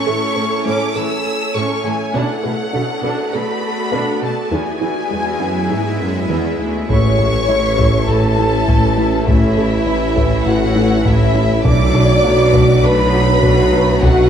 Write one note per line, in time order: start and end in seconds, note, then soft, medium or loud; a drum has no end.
0.00 2.11 A3 medium
0.00 2.14 C#4 medium
0.00 2.14 E4 medium
0.00 2.11 A4 soft
0.00 2.14 C#5 medium
0.00 0.66 C#6 medium
0.07 0.15 A2 soft
0.07 0.15 E3 soft
0.07 0.24 A4 soft
0.36 0.44 A2 soft
0.36 0.45 A3 soft
0.36 0.54 C#4 medium
0.66 0.75 A2 medium
0.66 0.84 A3 medium
0.66 0.94 C#4 medium
0.66 0.95 D6 medium
0.96 1.04 A2 soft
0.96 1.04 E3 soft
0.96 1.14 A4 medium
0.96 1.56 E6 medium
1.55 1.63 A2 medium
1.55 1.73 A3 medium
1.55 1.83 C#4 soft
1.55 1.85 C#6 medium
1.84 1.93 A2 soft
1.84 1.93 E3 soft
1.84 2.02 A4 soft
1.84 2.15 G#5 medium
2.14 2.23 B2 medium
2.14 4.49 A3 medium
2.14 2.32 B3 medium
2.14 6.90 B3 medium
2.14 2.42 D4 soft
2.14 4.53 F#4 medium
2.14 4.48 A4 soft
2.14 4.52 D5 medium
2.14 3.33 F#5 medium
2.44 2.52 B2 soft
2.44 2.52 A3 soft
2.44 2.62 A4 soft
2.73 2.82 B2 soft
2.73 2.82 B3 soft
2.73 2.91 D4 medium
3.03 3.11 B2 medium
3.03 3.21 B3 medium
3.03 3.31 D4 soft
3.33 3.41 B2 soft
3.33 3.41 A3 soft
3.33 3.51 A4 soft
3.33 4.23 B5 medium
3.92 4.01 B2 soft
3.92 4.10 B3 medium
3.92 4.20 D4 soft
4.22 4.31 B2 soft
4.22 4.30 A3 soft
4.22 4.40 A4 soft
4.22 4.52 A5 medium
4.51 4.60 E2 soft
4.51 4.70 E3 medium
4.51 6.90 G#3 medium
4.51 4.79 B3 soft
4.51 6.89 E4 medium
4.51 6.69 G#4 soft
4.51 6.89 E5 medium
4.51 6.30 G#5 medium
4.81 4.90 E2 soft
4.81 4.90 E3 soft
4.81 4.99 E4 soft
5.11 5.39 E2 soft
5.11 5.29 G#3 medium
5.11 5.20 G#3 soft
5.40 5.71 F#2 soft
5.40 5.58 E3 medium
5.40 5.69 B3 soft
5.70 6.01 G#2 soft
5.70 5.78 E3 soft
5.70 5.88 E4 soft
6.01 6.30 F#2 soft
6.30 6.60 E2 soft
6.30 6.48 E3 medium
6.30 6.58 B3 soft
6.59 6.89 D2 soft
6.59 6.68 E3 soft
6.59 6.77 E4 soft
6.89 7.42 A1 soft
6.89 11.67 A1 medium
6.89 7.08 A2 medium
6.89 7.42 A2 soft
6.89 11.61 A2 soft
6.89 11.61 E3 soft
6.89 11.61 A3 soft
6.89 7.07 A3 medium
6.89 6.98 A3 soft
6.89 11.61 A3 medium
6.89 11.61 C#4 medium
6.89 11.61 E4 soft
6.89 6.98 E4 soft
6.89 11.61 E4 medium
6.89 8.05 C#5 medium
6.89 11.61 E5 medium
6.89 8.05 C#6 medium
6.89 taiko medium
7.19 7.37 A2 medium
7.19 7.27 A3 soft
7.19 7.27 E4 soft
7.19 7.37 A4 soft
7.49 8.01 A1 medium
7.49 8.02 A1 soft
7.49 8.02 A2 soft
7.49 7.67 A3 soft
7.49 7.57 A3 soft
7.49 7.67 E4 medium
7.49 7.57 E4 soft
7.79 7.97 A2 medium
7.79 7.97 A3 medium
7.79 7.87 A3 soft
7.79 7.87 E4 soft
7.79 taiko medium
8.08 8.61 A1 soft
8.08 8.26 A2 medium
8.08 8.61 A2 medium
8.08 8.16 A3 soft
8.08 8.16 E4 soft
8.08 9.28 A4 medium
8.08 9.27 A5 medium
8.38 8.46 A3 soft
8.38 8.56 A3 medium
8.38 8.46 E4 soft
8.38 8.56 E4 soft
8.68 9.20 A1 soft
8.68 9.21 A1 soft
8.68 8.86 A2 medium
8.68 9.21 A2 soft
8.68 8.86 A3 medium
8.68 8.76 A3 soft
8.68 8.76 E4 soft
8.68 taiko medium
8.97 9.15 A3 medium
8.97 9.06 A3 soft
8.97 9.15 E4 medium
8.97 9.06 E4 soft
9.27 9.80 A1 soft
9.27 9.80 A1 medium
9.27 9.45 A2 medium
9.27 9.80 A2 soft
9.27 9.45 A3 medium
9.27 9.35 A3 soft
9.27 9.35 E4 soft
9.27 10.46 E4 medium
9.27 10.44 E5 medium
9.27 taiko medium
9.57 9.75 A2 medium
9.57 9.65 A3 soft
9.57 9.65 E4 soft
9.57 9.75 A4 soft
9.87 10.39 A1 soft
9.87 10.39 A2 soft
9.87 10.04 A3 soft
9.87 9.95 A3 soft
9.87 9.95 E4 soft
9.87 10.05 E4 medium
10.16 10.34 A2 medium
10.16 10.24 A3 soft
10.16 10.34 A3 medium
10.16 10.24 E4 soft
10.16 taiko medium
10.46 10.99 A1 soft
10.46 10.99 A1 medium
10.46 10.64 A2 medium
10.46 10.99 A2 soft
10.46 10.54 A3 soft
10.46 10.54 E4 soft
10.46 11.05 F#4 medium
10.46 11.06 F#5 medium
10.76 10.94 A3 medium
10.76 10.85 A3 soft
10.76 10.94 E4 medium
10.76 10.84 E4 soft
11.05 11.58 A1 soft
11.05 11.23 A2 medium
11.05 11.58 A2 medium
11.05 11.23 A3 medium
11.05 11.14 A3 soft
11.05 11.64 E4 medium
11.05 11.14 E4 soft
11.05 11.65 E5 medium
11.05 taiko medium
11.35 11.53 A3 medium
11.35 11.43 A3 soft
11.35 11.43 E4 soft
11.35 11.53 E4 medium
11.64 12.17 B1 medium
11.64 12.18 B1 medium
11.64 14.29 B1 medium
11.64 14.29 A2 medium
11.64 11.82 B2 medium
11.64 12.18 B2 soft
11.64 14.29 F#3 medium
11.64 14.29 A3 medium
11.64 11.73 A3 soft
11.64 14.29 B3 soft
11.64 14.29 B3 medium
11.64 11.83 B3 medium
11.64 14.29 D4 soft
11.64 11.73 D4 soft
11.64 14.29 F#4 medium
11.64 14.29 B4 medium
11.64 12.81 D5 medium
11.64 12.81 D6 medium
11.64 taiko medium
11.94 12.12 B2 medium
11.94 12.03 A3 soft
11.94 12.03 D4 soft
11.94 12.13 A4 soft
12.24 12.77 B1 medium
12.24 12.77 B2 soft
12.24 12.32 A3 soft
12.24 12.42 B3 soft
12.24 12.32 D4 soft
12.24 12.42 F#4 medium
12.53 12.71 B2 medium
12.53 12.62 A3 soft
12.53 12.72 B3 medium
12.53 12.62 D4 soft
12.53 taiko medium
12.83 13.36 B1 medium
12.83 13.01 B2 medium
12.83 13.36 B2 medium
12.83 12.92 A3 soft
12.83 12.92 D4 soft
12.83 14.03 B4 medium
12.83 14.03 B5 medium
13.13 13.22 A3 soft
13.13 13.31 B3 medium
13.13 13.22 D4 soft
13.13 13.31 F#4 medium
13.43 13.96 B1 medium
13.43 13.88 B1 medium
13.43 13.61 B2 medium
13.43 13.96 B2 medium
13.43 13.51 A3 soft
13.43 13.61 B3 medium
13.43 13.51 D4 soft
13.43 taiko medium
13.73 13.81 A3 soft
13.73 13.91 B3 medium
13.73 13.81 D4 soft
13.73 13.91 F#4 medium
14.02 14.29 B1 medium
14.02 14.21 B2 medium
14.02 14.29 B2 medium
14.02 14.11 A3 soft
14.02 14.20 B3 medium
14.02 14.10 D4 soft
14.02 14.29 F#4 medium
14.02 14.29 F#5 medium
14.02 taiko medium